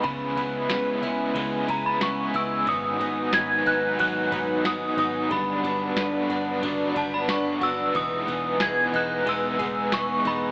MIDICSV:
0, 0, Header, 1, 7, 480
1, 0, Start_track
1, 0, Tempo, 659341
1, 26, Time_signature, 4, 2, 24, 8
1, 7656, End_track
2, 0, Start_track
2, 0, Title_t, "Synth bell"
2, 0, Program_c, 0, 98
2, 30, Note_on_c, 0, 83, 101
2, 1238, Note_on_c, 0, 82, 92
2, 1264, Note_off_c, 0, 83, 0
2, 1355, Note_off_c, 0, 82, 0
2, 1355, Note_on_c, 0, 83, 92
2, 1474, Note_off_c, 0, 83, 0
2, 1476, Note_on_c, 0, 85, 94
2, 1716, Note_on_c, 0, 88, 99
2, 1718, Note_off_c, 0, 85, 0
2, 1935, Note_off_c, 0, 88, 0
2, 1955, Note_on_c, 0, 87, 104
2, 2432, Note_on_c, 0, 92, 97
2, 2445, Note_off_c, 0, 87, 0
2, 2673, Note_on_c, 0, 90, 92
2, 2676, Note_off_c, 0, 92, 0
2, 2905, Note_off_c, 0, 90, 0
2, 2914, Note_on_c, 0, 90, 98
2, 3395, Note_on_c, 0, 87, 94
2, 3404, Note_off_c, 0, 90, 0
2, 3614, Note_off_c, 0, 87, 0
2, 3633, Note_on_c, 0, 87, 101
2, 3853, Note_off_c, 0, 87, 0
2, 3873, Note_on_c, 0, 83, 97
2, 5076, Note_on_c, 0, 81, 80
2, 5105, Note_off_c, 0, 83, 0
2, 5195, Note_off_c, 0, 81, 0
2, 5198, Note_on_c, 0, 83, 85
2, 5315, Note_off_c, 0, 83, 0
2, 5315, Note_on_c, 0, 85, 84
2, 5556, Note_on_c, 0, 88, 97
2, 5557, Note_off_c, 0, 85, 0
2, 5794, Note_on_c, 0, 87, 98
2, 5798, Note_off_c, 0, 88, 0
2, 6276, Note_on_c, 0, 92, 93
2, 6285, Note_off_c, 0, 87, 0
2, 6518, Note_off_c, 0, 92, 0
2, 6521, Note_on_c, 0, 90, 88
2, 6737, Note_off_c, 0, 90, 0
2, 6763, Note_on_c, 0, 88, 87
2, 7233, Note_on_c, 0, 85, 89
2, 7249, Note_off_c, 0, 88, 0
2, 7477, Note_off_c, 0, 85, 0
2, 7479, Note_on_c, 0, 83, 88
2, 7656, Note_off_c, 0, 83, 0
2, 7656, End_track
3, 0, Start_track
3, 0, Title_t, "Analog synth pad"
3, 0, Program_c, 1, 89
3, 0, Note_on_c, 1, 71, 69
3, 0, Note_on_c, 1, 80, 85
3, 24, Note_on_c, 1, 61, 75
3, 1917, Note_off_c, 1, 71, 0
3, 1926, Note_off_c, 1, 61, 0
3, 1947, Note_on_c, 1, 63, 76
3, 1947, Note_on_c, 1, 78, 67
3, 1949, Note_on_c, 1, 71, 71
3, 3836, Note_off_c, 1, 80, 0
3, 3847, Note_off_c, 1, 63, 0
3, 3849, Note_off_c, 1, 71, 0
3, 3861, Note_on_c, 1, 74, 83
3, 3864, Note_on_c, 1, 62, 74
3, 3866, Note_on_c, 1, 71, 72
3, 5758, Note_off_c, 1, 78, 0
3, 5764, Note_off_c, 1, 74, 0
3, 5766, Note_off_c, 1, 62, 0
3, 5785, Note_on_c, 1, 80, 83
3, 5788, Note_on_c, 1, 59, 75
3, 7656, Note_off_c, 1, 59, 0
3, 7656, Note_off_c, 1, 71, 0
3, 7656, Note_off_c, 1, 80, 0
3, 7656, End_track
4, 0, Start_track
4, 0, Title_t, "Clean electric guitar"
4, 0, Program_c, 2, 27
4, 0, Note_on_c, 2, 56, 68
4, 0, Note_on_c, 2, 59, 55
4, 0, Note_on_c, 2, 63, 60
4, 0, Note_on_c, 2, 71, 63
4, 74, Note_off_c, 2, 63, 0
4, 264, Note_off_c, 2, 59, 0
4, 504, Note_off_c, 2, 71, 0
4, 507, Note_on_c, 2, 71, 63
4, 981, Note_off_c, 2, 56, 0
4, 1220, Note_off_c, 2, 71, 0
4, 1223, Note_on_c, 2, 71, 65
4, 2421, Note_off_c, 2, 71, 0
4, 2424, Note_on_c, 2, 71, 68
4, 3140, Note_off_c, 2, 71, 0
4, 3143, Note_on_c, 2, 71, 70
4, 3864, Note_on_c, 2, 55, 89
4, 4343, Note_off_c, 2, 71, 0
4, 4346, Note_on_c, 2, 71, 67
4, 4585, Note_on_c, 2, 66, 57
4, 4824, Note_on_c, 2, 62, 72
4, 5060, Note_off_c, 2, 71, 0
4, 5063, Note_on_c, 2, 71, 61
4, 5294, Note_off_c, 2, 62, 0
4, 5534, Note_off_c, 2, 66, 0
4, 5542, Note_on_c, 2, 66, 59
4, 5785, Note_off_c, 2, 55, 0
4, 5832, Note_off_c, 2, 66, 0
4, 6260, Note_off_c, 2, 71, 0
4, 6263, Note_on_c, 2, 68, 69
4, 6981, Note_off_c, 2, 68, 0
4, 6984, Note_on_c, 2, 68, 68
4, 7656, Note_off_c, 2, 68, 0
4, 7656, End_track
5, 0, Start_track
5, 0, Title_t, "Overdriven electric guitar"
5, 0, Program_c, 3, 29
5, 20, Note_on_c, 3, 49, 73
5, 32, Note_on_c, 3, 56, 80
5, 40, Note_on_c, 3, 59, 77
5, 48, Note_on_c, 3, 64, 84
5, 250, Note_off_c, 3, 64, 0
5, 258, Note_on_c, 3, 64, 51
5, 263, Note_off_c, 3, 49, 0
5, 269, Note_off_c, 3, 56, 0
5, 273, Note_off_c, 3, 59, 0
5, 282, Note_on_c, 3, 59, 53
5, 302, Note_on_c, 3, 56, 40
5, 502, Note_off_c, 3, 64, 0
5, 502, Note_on_c, 3, 49, 82
5, 505, Note_off_c, 3, 56, 0
5, 514, Note_off_c, 3, 59, 0
5, 514, Note_on_c, 3, 56, 83
5, 522, Note_on_c, 3, 59, 91
5, 532, Note_on_c, 3, 64, 84
5, 732, Note_off_c, 3, 64, 0
5, 741, Note_on_c, 3, 64, 63
5, 744, Note_off_c, 3, 49, 0
5, 750, Note_off_c, 3, 56, 0
5, 754, Note_off_c, 3, 59, 0
5, 762, Note_on_c, 3, 59, 58
5, 780, Note_on_c, 3, 56, 54
5, 979, Note_on_c, 3, 49, 64
5, 983, Note_off_c, 3, 64, 0
5, 986, Note_off_c, 3, 56, 0
5, 994, Note_off_c, 3, 59, 0
5, 994, Note_on_c, 3, 56, 72
5, 1008, Note_on_c, 3, 59, 64
5, 1019, Note_on_c, 3, 64, 68
5, 1209, Note_off_c, 3, 64, 0
5, 1218, Note_on_c, 3, 64, 58
5, 1222, Note_off_c, 3, 49, 0
5, 1230, Note_off_c, 3, 56, 0
5, 1230, Note_off_c, 3, 59, 0
5, 1239, Note_on_c, 3, 59, 54
5, 1258, Note_on_c, 3, 56, 44
5, 1459, Note_on_c, 3, 49, 84
5, 1462, Note_off_c, 3, 64, 0
5, 1463, Note_off_c, 3, 56, 0
5, 1472, Note_on_c, 3, 56, 86
5, 1473, Note_off_c, 3, 59, 0
5, 1480, Note_on_c, 3, 59, 84
5, 1489, Note_on_c, 3, 64, 88
5, 1690, Note_off_c, 3, 64, 0
5, 1698, Note_on_c, 3, 64, 55
5, 1703, Note_off_c, 3, 49, 0
5, 1709, Note_off_c, 3, 56, 0
5, 1713, Note_off_c, 3, 59, 0
5, 1720, Note_on_c, 3, 59, 47
5, 1739, Note_on_c, 3, 56, 44
5, 1942, Note_off_c, 3, 64, 0
5, 1943, Note_on_c, 3, 44, 79
5, 1952, Note_on_c, 3, 51, 79
5, 1953, Note_off_c, 3, 59, 0
5, 1955, Note_off_c, 3, 56, 0
5, 1958, Note_on_c, 3, 54, 76
5, 1964, Note_on_c, 3, 59, 79
5, 1971, Note_on_c, 3, 63, 80
5, 2167, Note_off_c, 3, 63, 0
5, 2176, Note_on_c, 3, 63, 50
5, 2185, Note_off_c, 3, 44, 0
5, 2189, Note_off_c, 3, 51, 0
5, 2191, Note_off_c, 3, 59, 0
5, 2192, Note_off_c, 3, 54, 0
5, 2199, Note_on_c, 3, 59, 49
5, 2216, Note_on_c, 3, 54, 46
5, 2417, Note_on_c, 3, 44, 87
5, 2421, Note_off_c, 3, 63, 0
5, 2426, Note_off_c, 3, 54, 0
5, 2427, Note_on_c, 3, 51, 85
5, 2433, Note_off_c, 3, 59, 0
5, 2435, Note_on_c, 3, 54, 87
5, 2441, Note_on_c, 3, 59, 91
5, 2447, Note_on_c, 3, 63, 94
5, 2646, Note_off_c, 3, 63, 0
5, 2655, Note_on_c, 3, 63, 52
5, 2662, Note_off_c, 3, 44, 0
5, 2667, Note_off_c, 3, 51, 0
5, 2668, Note_off_c, 3, 59, 0
5, 2670, Note_off_c, 3, 54, 0
5, 2677, Note_on_c, 3, 59, 53
5, 2695, Note_on_c, 3, 54, 46
5, 2892, Note_on_c, 3, 51, 55
5, 2900, Note_off_c, 3, 54, 0
5, 2900, Note_off_c, 3, 63, 0
5, 2908, Note_on_c, 3, 54, 62
5, 2912, Note_off_c, 3, 59, 0
5, 2921, Note_on_c, 3, 59, 63
5, 2932, Note_on_c, 3, 63, 66
5, 3125, Note_off_c, 3, 63, 0
5, 3134, Note_on_c, 3, 63, 59
5, 3139, Note_off_c, 3, 51, 0
5, 3146, Note_off_c, 3, 59, 0
5, 3147, Note_off_c, 3, 54, 0
5, 3154, Note_on_c, 3, 59, 51
5, 3173, Note_on_c, 3, 54, 46
5, 3375, Note_on_c, 3, 44, 80
5, 3380, Note_off_c, 3, 63, 0
5, 3384, Note_off_c, 3, 54, 0
5, 3385, Note_on_c, 3, 51, 79
5, 3390, Note_off_c, 3, 59, 0
5, 3392, Note_on_c, 3, 54, 86
5, 3398, Note_on_c, 3, 59, 89
5, 3404, Note_on_c, 3, 63, 82
5, 3607, Note_off_c, 3, 63, 0
5, 3616, Note_on_c, 3, 63, 52
5, 3621, Note_off_c, 3, 44, 0
5, 3626, Note_off_c, 3, 51, 0
5, 3629, Note_off_c, 3, 54, 0
5, 3632, Note_off_c, 3, 59, 0
5, 3640, Note_on_c, 3, 59, 47
5, 3658, Note_on_c, 3, 54, 42
5, 3859, Note_on_c, 3, 43, 71
5, 3861, Note_off_c, 3, 63, 0
5, 3866, Note_off_c, 3, 54, 0
5, 3869, Note_on_c, 3, 50, 73
5, 3873, Note_off_c, 3, 59, 0
5, 3875, Note_on_c, 3, 54, 80
5, 3882, Note_on_c, 3, 59, 87
5, 3887, Note_on_c, 3, 62, 86
5, 4087, Note_off_c, 3, 62, 0
5, 4095, Note_on_c, 3, 62, 49
5, 4102, Note_off_c, 3, 43, 0
5, 4108, Note_off_c, 3, 50, 0
5, 4108, Note_off_c, 3, 59, 0
5, 4111, Note_off_c, 3, 54, 0
5, 4117, Note_on_c, 3, 59, 47
5, 4136, Note_on_c, 3, 54, 48
5, 4338, Note_on_c, 3, 43, 83
5, 4341, Note_off_c, 3, 62, 0
5, 4347, Note_off_c, 3, 54, 0
5, 4349, Note_on_c, 3, 50, 84
5, 4351, Note_off_c, 3, 59, 0
5, 4355, Note_on_c, 3, 54, 87
5, 4363, Note_on_c, 3, 59, 98
5, 4369, Note_on_c, 3, 62, 97
5, 4568, Note_off_c, 3, 62, 0
5, 4576, Note_on_c, 3, 62, 64
5, 4582, Note_off_c, 3, 43, 0
5, 4588, Note_off_c, 3, 50, 0
5, 4590, Note_off_c, 3, 59, 0
5, 4591, Note_off_c, 3, 54, 0
5, 4599, Note_on_c, 3, 59, 58
5, 4618, Note_on_c, 3, 54, 53
5, 4817, Note_on_c, 3, 50, 61
5, 4821, Note_off_c, 3, 62, 0
5, 4823, Note_off_c, 3, 54, 0
5, 4832, Note_on_c, 3, 54, 72
5, 4833, Note_off_c, 3, 59, 0
5, 4847, Note_on_c, 3, 59, 63
5, 4858, Note_on_c, 3, 62, 78
5, 5049, Note_off_c, 3, 62, 0
5, 5058, Note_on_c, 3, 62, 57
5, 5062, Note_off_c, 3, 50, 0
5, 5069, Note_off_c, 3, 54, 0
5, 5072, Note_off_c, 3, 59, 0
5, 5081, Note_on_c, 3, 59, 49
5, 5100, Note_on_c, 3, 54, 48
5, 5300, Note_on_c, 3, 43, 81
5, 5302, Note_off_c, 3, 62, 0
5, 5306, Note_off_c, 3, 54, 0
5, 5310, Note_on_c, 3, 50, 86
5, 5312, Note_off_c, 3, 59, 0
5, 5315, Note_on_c, 3, 54, 85
5, 5320, Note_on_c, 3, 59, 78
5, 5329, Note_on_c, 3, 62, 83
5, 5525, Note_off_c, 3, 62, 0
5, 5534, Note_on_c, 3, 62, 50
5, 5543, Note_off_c, 3, 43, 0
5, 5548, Note_off_c, 3, 50, 0
5, 5549, Note_off_c, 3, 59, 0
5, 5551, Note_off_c, 3, 54, 0
5, 5557, Note_on_c, 3, 59, 44
5, 5576, Note_on_c, 3, 54, 40
5, 5778, Note_on_c, 3, 52, 80
5, 5780, Note_off_c, 3, 62, 0
5, 5787, Note_off_c, 3, 54, 0
5, 5790, Note_on_c, 3, 56, 76
5, 5792, Note_off_c, 3, 59, 0
5, 5800, Note_on_c, 3, 59, 80
5, 5806, Note_on_c, 3, 63, 87
5, 6008, Note_off_c, 3, 63, 0
5, 6016, Note_on_c, 3, 63, 52
5, 6022, Note_off_c, 3, 52, 0
5, 6028, Note_off_c, 3, 56, 0
5, 6030, Note_off_c, 3, 59, 0
5, 6039, Note_on_c, 3, 59, 50
5, 6057, Note_on_c, 3, 56, 43
5, 6255, Note_off_c, 3, 56, 0
5, 6255, Note_on_c, 3, 52, 80
5, 6261, Note_off_c, 3, 63, 0
5, 6264, Note_on_c, 3, 56, 80
5, 6266, Note_off_c, 3, 59, 0
5, 6275, Note_on_c, 3, 59, 94
5, 6282, Note_on_c, 3, 63, 89
5, 6487, Note_off_c, 3, 63, 0
5, 6495, Note_on_c, 3, 63, 52
5, 6500, Note_off_c, 3, 52, 0
5, 6505, Note_off_c, 3, 56, 0
5, 6509, Note_off_c, 3, 59, 0
5, 6517, Note_on_c, 3, 59, 50
5, 6536, Note_on_c, 3, 56, 43
5, 6736, Note_on_c, 3, 52, 55
5, 6741, Note_off_c, 3, 63, 0
5, 6744, Note_off_c, 3, 56, 0
5, 6752, Note_off_c, 3, 59, 0
5, 6752, Note_on_c, 3, 56, 59
5, 6765, Note_on_c, 3, 59, 64
5, 6777, Note_on_c, 3, 63, 69
5, 6968, Note_off_c, 3, 63, 0
5, 6977, Note_on_c, 3, 63, 55
5, 6981, Note_off_c, 3, 52, 0
5, 6989, Note_off_c, 3, 56, 0
5, 6990, Note_off_c, 3, 59, 0
5, 6998, Note_on_c, 3, 59, 54
5, 7017, Note_on_c, 3, 56, 44
5, 7218, Note_on_c, 3, 52, 81
5, 7221, Note_off_c, 3, 56, 0
5, 7222, Note_off_c, 3, 63, 0
5, 7230, Note_off_c, 3, 59, 0
5, 7230, Note_on_c, 3, 56, 87
5, 7238, Note_on_c, 3, 59, 94
5, 7246, Note_on_c, 3, 63, 90
5, 7447, Note_off_c, 3, 63, 0
5, 7456, Note_on_c, 3, 63, 47
5, 7462, Note_off_c, 3, 52, 0
5, 7468, Note_off_c, 3, 56, 0
5, 7470, Note_off_c, 3, 59, 0
5, 7479, Note_on_c, 3, 59, 47
5, 7497, Note_on_c, 3, 56, 47
5, 7656, Note_off_c, 3, 56, 0
5, 7656, Note_off_c, 3, 59, 0
5, 7656, Note_off_c, 3, 63, 0
5, 7656, End_track
6, 0, Start_track
6, 0, Title_t, "Picked electric bass"
6, 0, Program_c, 4, 34
6, 25, Note_on_c, 4, 37, 105
6, 237, Note_off_c, 4, 37, 0
6, 263, Note_on_c, 4, 37, 104
6, 475, Note_off_c, 4, 37, 0
6, 507, Note_on_c, 4, 37, 91
6, 718, Note_off_c, 4, 37, 0
6, 744, Note_on_c, 4, 37, 97
6, 956, Note_off_c, 4, 37, 0
6, 983, Note_on_c, 4, 37, 101
6, 1196, Note_off_c, 4, 37, 0
6, 1224, Note_on_c, 4, 37, 97
6, 1436, Note_off_c, 4, 37, 0
6, 1463, Note_on_c, 4, 37, 100
6, 1675, Note_off_c, 4, 37, 0
6, 1704, Note_on_c, 4, 37, 101
6, 1916, Note_off_c, 4, 37, 0
6, 1944, Note_on_c, 4, 32, 100
6, 2156, Note_off_c, 4, 32, 0
6, 2180, Note_on_c, 4, 32, 96
6, 2394, Note_off_c, 4, 32, 0
6, 2420, Note_on_c, 4, 32, 95
6, 2634, Note_off_c, 4, 32, 0
6, 2663, Note_on_c, 4, 32, 101
6, 2876, Note_off_c, 4, 32, 0
6, 2902, Note_on_c, 4, 32, 104
6, 3115, Note_off_c, 4, 32, 0
6, 3145, Note_on_c, 4, 32, 102
6, 3357, Note_off_c, 4, 32, 0
6, 3384, Note_on_c, 4, 32, 98
6, 3596, Note_off_c, 4, 32, 0
6, 3619, Note_on_c, 4, 32, 93
6, 3834, Note_off_c, 4, 32, 0
6, 3865, Note_on_c, 4, 31, 110
6, 4077, Note_off_c, 4, 31, 0
6, 4099, Note_on_c, 4, 31, 97
6, 4314, Note_off_c, 4, 31, 0
6, 4338, Note_on_c, 4, 31, 94
6, 4553, Note_off_c, 4, 31, 0
6, 4582, Note_on_c, 4, 31, 96
6, 4795, Note_off_c, 4, 31, 0
6, 4826, Note_on_c, 4, 31, 105
6, 5037, Note_off_c, 4, 31, 0
6, 5066, Note_on_c, 4, 31, 97
6, 5277, Note_off_c, 4, 31, 0
6, 5299, Note_on_c, 4, 31, 101
6, 5513, Note_off_c, 4, 31, 0
6, 5541, Note_on_c, 4, 31, 95
6, 5755, Note_off_c, 4, 31, 0
6, 5785, Note_on_c, 4, 28, 97
6, 5997, Note_off_c, 4, 28, 0
6, 6023, Note_on_c, 4, 28, 88
6, 6235, Note_off_c, 4, 28, 0
6, 6262, Note_on_c, 4, 28, 85
6, 6475, Note_off_c, 4, 28, 0
6, 6503, Note_on_c, 4, 28, 90
6, 6716, Note_off_c, 4, 28, 0
6, 6743, Note_on_c, 4, 28, 108
6, 6956, Note_off_c, 4, 28, 0
6, 6982, Note_on_c, 4, 28, 97
6, 7195, Note_off_c, 4, 28, 0
6, 7224, Note_on_c, 4, 28, 92
6, 7436, Note_off_c, 4, 28, 0
6, 7461, Note_on_c, 4, 28, 106
6, 7656, Note_off_c, 4, 28, 0
6, 7656, End_track
7, 0, Start_track
7, 0, Title_t, "Drums"
7, 26, Note_on_c, 9, 36, 108
7, 27, Note_on_c, 9, 51, 55
7, 99, Note_off_c, 9, 36, 0
7, 99, Note_off_c, 9, 51, 0
7, 272, Note_on_c, 9, 51, 43
7, 345, Note_off_c, 9, 51, 0
7, 506, Note_on_c, 9, 38, 104
7, 508, Note_on_c, 9, 54, 61
7, 509, Note_on_c, 9, 51, 59
7, 579, Note_off_c, 9, 38, 0
7, 581, Note_off_c, 9, 51, 0
7, 581, Note_off_c, 9, 54, 0
7, 749, Note_on_c, 9, 51, 42
7, 821, Note_off_c, 9, 51, 0
7, 988, Note_on_c, 9, 51, 71
7, 1060, Note_off_c, 9, 51, 0
7, 1226, Note_on_c, 9, 36, 97
7, 1227, Note_on_c, 9, 51, 53
7, 1298, Note_off_c, 9, 36, 0
7, 1300, Note_off_c, 9, 51, 0
7, 1464, Note_on_c, 9, 38, 110
7, 1464, Note_on_c, 9, 54, 65
7, 1467, Note_on_c, 9, 51, 61
7, 1537, Note_off_c, 9, 38, 0
7, 1537, Note_off_c, 9, 54, 0
7, 1540, Note_off_c, 9, 51, 0
7, 1704, Note_on_c, 9, 51, 46
7, 1777, Note_off_c, 9, 51, 0
7, 1944, Note_on_c, 9, 51, 57
7, 1945, Note_on_c, 9, 36, 104
7, 2017, Note_off_c, 9, 51, 0
7, 2018, Note_off_c, 9, 36, 0
7, 2190, Note_on_c, 9, 51, 42
7, 2262, Note_off_c, 9, 51, 0
7, 2422, Note_on_c, 9, 38, 110
7, 2424, Note_on_c, 9, 54, 66
7, 2425, Note_on_c, 9, 51, 55
7, 2495, Note_off_c, 9, 38, 0
7, 2497, Note_off_c, 9, 51, 0
7, 2497, Note_off_c, 9, 54, 0
7, 2667, Note_on_c, 9, 51, 42
7, 2740, Note_off_c, 9, 51, 0
7, 2907, Note_on_c, 9, 51, 73
7, 2979, Note_off_c, 9, 51, 0
7, 3145, Note_on_c, 9, 36, 96
7, 3146, Note_on_c, 9, 51, 50
7, 3218, Note_off_c, 9, 36, 0
7, 3219, Note_off_c, 9, 51, 0
7, 3385, Note_on_c, 9, 38, 110
7, 3386, Note_on_c, 9, 54, 62
7, 3388, Note_on_c, 9, 51, 61
7, 3458, Note_off_c, 9, 38, 0
7, 3458, Note_off_c, 9, 54, 0
7, 3461, Note_off_c, 9, 51, 0
7, 3624, Note_on_c, 9, 51, 44
7, 3697, Note_off_c, 9, 51, 0
7, 3864, Note_on_c, 9, 51, 56
7, 3865, Note_on_c, 9, 36, 106
7, 3937, Note_off_c, 9, 51, 0
7, 3938, Note_off_c, 9, 36, 0
7, 4110, Note_on_c, 9, 51, 44
7, 4183, Note_off_c, 9, 51, 0
7, 4343, Note_on_c, 9, 38, 106
7, 4346, Note_on_c, 9, 51, 59
7, 4346, Note_on_c, 9, 54, 67
7, 4416, Note_off_c, 9, 38, 0
7, 4418, Note_off_c, 9, 54, 0
7, 4419, Note_off_c, 9, 51, 0
7, 4586, Note_on_c, 9, 51, 43
7, 4659, Note_off_c, 9, 51, 0
7, 4826, Note_on_c, 9, 36, 89
7, 4826, Note_on_c, 9, 51, 71
7, 4899, Note_off_c, 9, 36, 0
7, 4899, Note_off_c, 9, 51, 0
7, 5065, Note_on_c, 9, 36, 97
7, 5067, Note_on_c, 9, 51, 52
7, 5138, Note_off_c, 9, 36, 0
7, 5140, Note_off_c, 9, 51, 0
7, 5305, Note_on_c, 9, 38, 117
7, 5305, Note_on_c, 9, 54, 70
7, 5308, Note_on_c, 9, 51, 63
7, 5378, Note_off_c, 9, 38, 0
7, 5378, Note_off_c, 9, 54, 0
7, 5381, Note_off_c, 9, 51, 0
7, 5544, Note_on_c, 9, 51, 44
7, 5617, Note_off_c, 9, 51, 0
7, 5786, Note_on_c, 9, 36, 112
7, 5787, Note_on_c, 9, 51, 56
7, 5858, Note_off_c, 9, 36, 0
7, 5859, Note_off_c, 9, 51, 0
7, 6029, Note_on_c, 9, 51, 40
7, 6102, Note_off_c, 9, 51, 0
7, 6261, Note_on_c, 9, 38, 105
7, 6263, Note_on_c, 9, 51, 57
7, 6263, Note_on_c, 9, 54, 65
7, 6334, Note_off_c, 9, 38, 0
7, 6336, Note_off_c, 9, 51, 0
7, 6336, Note_off_c, 9, 54, 0
7, 6507, Note_on_c, 9, 51, 41
7, 6579, Note_off_c, 9, 51, 0
7, 6747, Note_on_c, 9, 51, 70
7, 6819, Note_off_c, 9, 51, 0
7, 6984, Note_on_c, 9, 36, 98
7, 6984, Note_on_c, 9, 51, 52
7, 7057, Note_off_c, 9, 36, 0
7, 7057, Note_off_c, 9, 51, 0
7, 7223, Note_on_c, 9, 38, 119
7, 7223, Note_on_c, 9, 54, 69
7, 7226, Note_on_c, 9, 51, 61
7, 7296, Note_off_c, 9, 38, 0
7, 7296, Note_off_c, 9, 54, 0
7, 7299, Note_off_c, 9, 51, 0
7, 7463, Note_on_c, 9, 51, 44
7, 7536, Note_off_c, 9, 51, 0
7, 7656, End_track
0, 0, End_of_file